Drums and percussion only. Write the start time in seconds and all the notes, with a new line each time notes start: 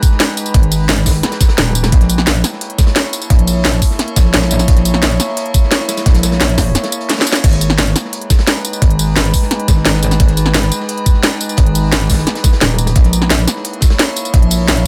0.03 kick, closed hi-hat, tambourine
0.11 snare
0.20 snare, closed hi-hat
0.29 snare
0.37 closed hi-hat, tambourine
0.46 closed hi-hat, tambourine
0.54 kick, closed hi-hat
0.63 closed hi-hat
0.71 closed hi-hat, open hi-hat, tambourine
0.89 snare, closed hi-hat
0.97 closed hi-hat
1.06 kick, snare, closed hi-hat, open hi-hat, tambourine
1.10 snare, closed hi-hat
1.15 closed hi-hat
1.23 snare, closed hi-hat
1.32 snare, closed hi-hat
1.40 kick, snare, closed hi-hat, tambourine
1.49 snare, closed hi-hat
1.58 snare, closed hi-hat
1.75 closed hi-hat, tambourine
1.84 snare, closed hi-hat, tambourine
1.92 kick, closed hi-hat
2.01 snare, closed hi-hat
2.09 closed hi-hat, tambourine
2.18 snare
2.27 snare, closed hi-hat
2.35 closed hi-hat
2.44 snare, closed hi-hat, tambourine
2.52 snare
2.61 closed hi-hat
2.70 closed hi-hat
2.78 kick, snare, closed hi-hat, tambourine
2.87 snare, closed hi-hat
2.96 snare, closed hi-hat
3.05 snare
3.13 closed hi-hat, tambourine
3.22 closed hi-hat, tambourine
3.30 kick, closed hi-hat
3.39 closed hi-hat
3.47 closed hi-hat, open hi-hat, tambourine
3.65 snare, closed hi-hat
3.73 closed hi-hat
3.82 kick, closed hi-hat, open hi-hat, tambourine
3.90 snare
3.99 snare, closed hi-hat
4.08 closed hi-hat
4.16 kick, snare, closed hi-hat, tambourine
4.25 snare
4.34 snare, closed hi-hat
4.42 snare, closed hi-hat
4.51 snare, closed hi-hat, tambourine
4.59 snare, closed hi-hat, tambourine
4.68 kick, closed hi-hat
4.76 snare, closed hi-hat
4.85 closed hi-hat, tambourine
4.94 snare
5.02 snare, closed hi-hat
5.11 closed hi-hat
5.20 snare, closed hi-hat, tambourine
5.28 snare
5.37 closed hi-hat
5.46 closed hi-hat
5.54 kick, closed hi-hat, tambourine
5.63 snare
5.71 snare, closed hi-hat
5.80 snare
5.88 snare, closed hi-hat, tambourine
5.97 snare, closed hi-hat, tambourine
6.06 kick, snare, closed hi-hat
6.14 snare, closed hi-hat
6.23 snare, closed hi-hat, tambourine
6.32 snare, closed hi-hat
6.40 snare, closed hi-hat
6.49 closed hi-hat
6.58 kick, snare, closed hi-hat, open hi-hat, tambourine
6.75 snare, closed hi-hat, tambourine
6.83 snare, closed hi-hat
6.92 closed hi-hat, tambourine
7.01 closed hi-hat
7.09 snare, closed hi-hat
7.14 snare, closed hi-hat
7.18 snare, closed hi-hat
7.21 snare
7.26 closed hi-hat, tambourine
7.32 snare, closed hi-hat, tambourine
7.44 kick, closed hi-hat, crash
7.52 snare, closed hi-hat
7.61 closed hi-hat, tambourine
7.70 snare
7.78 snare, closed hi-hat
7.87 closed hi-hat
7.96 snare, closed hi-hat, tambourine
8.04 snare
8.13 closed hi-hat
8.21 closed hi-hat
8.30 kick, snare, closed hi-hat, tambourine
8.39 snare, closed hi-hat
8.47 snare, closed hi-hat
8.57 snare
8.65 closed hi-hat, tambourine
8.73 closed hi-hat, tambourine
8.82 kick, closed hi-hat
8.91 closed hi-hat
8.99 closed hi-hat, open hi-hat, tambourine
9.16 snare, closed hi-hat
9.25 closed hi-hat
9.34 kick, closed hi-hat, open hi-hat, tambourine
9.42 snare
9.51 snare, closed hi-hat
9.60 closed hi-hat
9.68 kick, snare, closed hi-hat, tambourine
9.77 snare
9.85 snare, closed hi-hat
9.94 snare, closed hi-hat
10.02 snare, closed hi-hat, tambourine
10.11 snare, closed hi-hat, tambourine
10.20 kick, closed hi-hat
10.28 snare, closed hi-hat
10.37 closed hi-hat, tambourine
10.46 snare
10.54 snare, closed hi-hat
10.63 closed hi-hat
10.72 closed hi-hat, tambourine
10.80 snare
10.89 closed hi-hat
10.97 closed hi-hat
11.06 kick, closed hi-hat, tambourine
11.14 snare
11.23 snare, closed hi-hat
11.32 snare
11.40 closed hi-hat, tambourine
11.49 closed hi-hat, tambourine
11.57 kick, closed hi-hat
11.66 closed hi-hat
11.75 closed hi-hat, open hi-hat, tambourine
11.92 snare, closed hi-hat
12.01 closed hi-hat
12.09 kick, snare, closed hi-hat, open hi-hat, tambourine
12.13 snare, closed hi-hat
12.19 snare, closed hi-hat
12.27 snare, closed hi-hat
12.35 snare, closed hi-hat
12.44 kick, snare, closed hi-hat, tambourine
12.53 snare, closed hi-hat
12.61 snare, closed hi-hat
12.78 closed hi-hat, tambourine
12.87 closed hi-hat, tambourine
12.95 kick, closed hi-hat
13.04 snare, closed hi-hat
13.13 closed hi-hat, tambourine
13.22 snare
13.30 snare, closed hi-hat
13.39 closed hi-hat
13.47 snare, closed hi-hat, tambourine
13.56 snare
13.64 closed hi-hat
13.73 closed hi-hat
13.81 kick, snare, closed hi-hat, tambourine
13.90 snare, closed hi-hat
13.99 snare, closed hi-hat
14.07 snare
14.16 closed hi-hat, tambourine
14.25 closed hi-hat, tambourine
14.34 kick, closed hi-hat
14.42 closed hi-hat
14.50 closed hi-hat, open hi-hat, tambourine
14.68 snare, closed hi-hat
14.77 closed hi-hat